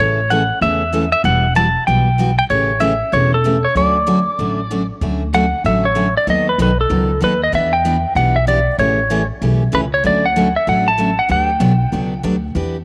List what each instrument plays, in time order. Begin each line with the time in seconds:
0.00 upright bass A1, steel-string acoustic guitar C#3 E3 A3 C#4 A4, electric slide guitar C#5
0.30 steel-string acoustic guitar C#3 E3 A3 C#4 A4, electric slide guitar F#5
0.61 upright bass E2, steel-string acoustic guitar C#3 E3 A3 C#4 A4, electric slide guitar E5
0.93 steel-string acoustic guitar C#3 E3 A3 C#4 A4
1.12 electric slide guitar E5
1.24 upright bass E1, steel-string acoustic guitar E3 G3 B3 F#4, electric slide guitar F#5
1.55 steel-string acoustic guitar E3 G3 B3 F#4, electric slide guitar A5
1.87 upright bass B1, steel-string acoustic guitar E3 G3 B3 F#4, electric slide guitar G5
2.18 steel-string acoustic guitar E3 G3 B3 F#4
2.39 electric slide guitar G5
2.50 upright bass A1, steel-string acoustic guitar C#3 E3 A3 C#4 G4, electric slide guitar C#5
2.80 steel-string acoustic guitar C#3 E3 A3 C#4 G4, electric slide guitar E5
3.12 upright bass E1, steel-string acoustic guitar C#3 E3 A3 C#4 G4, electric slide guitar C#5
3.34 electric slide guitar A4
3.44 steel-string acoustic guitar C#3 E3 A3 C#4 G4
3.65 electric slide guitar C#5
3.75 upright bass D2, steel-string acoustic guitar D3 F#3 A3 C#4 F#4, electric slide guitar D5
4.07 steel-string acoustic guitar D3 F#3 A3 C#4 F#4
4.39 upright bass A1, steel-string acoustic guitar D3 F#3 A3 C#4 F#4
4.71 steel-string acoustic guitar D3 F#3 A3 C#4 F#4
5.01 upright bass D2, steel-string acoustic guitar D3 F#3 A3 C#4 F#4
5.33 steel-string acoustic guitar D3 F#3 A3 C#4 F#4, electric slide guitar F#5
5.64 upright bass A1, steel-string acoustic guitar D3 F#3 A3 C#4 F#4, electric slide guitar E5
5.85 electric slide guitar C#5
5.95 steel-string acoustic guitar D3 F#3 A3 C#4 F#4
6.17 electric slide guitar D5
6.27 upright bass D#2, steel-string acoustic guitar D#3 F#3 B3 D#4 A4, electric slide guitar D#5
6.49 electric slide guitar B4
6.58 upright bass B1, steel-string acoustic guitar D#3 F#3 B3 D#4 A4, electric slide guitar B4
6.81 electric slide guitar A4
6.90 upright bass C#2, steel-string acoustic guitar D#3 F#3 B3 D#4 A4
7.21 upright bass D#2, steel-string acoustic guitar D#3 F#3 B3 D#4 A4, electric slide guitar B4
7.43 electric slide guitar D#5
7.52 upright bass E2, steel-string acoustic guitar E3 B3 D4 G4, electric slide guitar E5
7.73 electric slide guitar G5
7.85 steel-string acoustic guitar E3 B3 D4 G4
8.15 upright bass B1, steel-string acoustic guitar E3 B3 D4 G4, electric slide guitar F#5
8.36 electric slide guitar E5
8.47 steel-string acoustic guitar E3 B3 D4 G4, electric slide guitar D5
8.78 upright bass A1, steel-string acoustic guitar C#3 E3 A3 C#4 G4, electric slide guitar C#5
9.10 steel-string acoustic guitar C#3 E3 A3 C#4 G4
9.41 upright bass B1, steel-string acoustic guitar C#3 E3 A3 C#4 G4
9.72 upright bass C#2, steel-string acoustic guitar C#3 E3 A3 C#4 G4, electric slide guitar B4
9.94 electric slide guitar C#5
10.04 upright bass D2, steel-string acoustic guitar D3 F#3 A3 C#4 F#4, electric slide guitar D5
10.26 electric slide guitar F#5
10.36 steel-string acoustic guitar D3 F#3 A3 C#4 F#4
10.56 electric slide guitar E5
10.67 upright bass A1, steel-string acoustic guitar D3 F#3 A3 C#4 F#4, electric slide guitar F#5
10.88 electric slide guitar A5
10.98 steel-string acoustic guitar D3 F#3 A3 C#4 F#4
11.19 electric slide guitar F#5
11.28 upright bass D2, steel-string acoustic guitar D3 F#3 B3 D4 G4, electric slide guitar G5
11.60 upright bass B1, steel-string acoustic guitar D3 F#3 B3 D4 G4
11.92 upright bass C#2, steel-string acoustic guitar D3 F#3 B3 D4 G4
12.23 upright bass D2, steel-string acoustic guitar D3 F#3 B3 D4 G4
12.55 upright bass E2, steel-string acoustic guitar E3 B3 D4 G4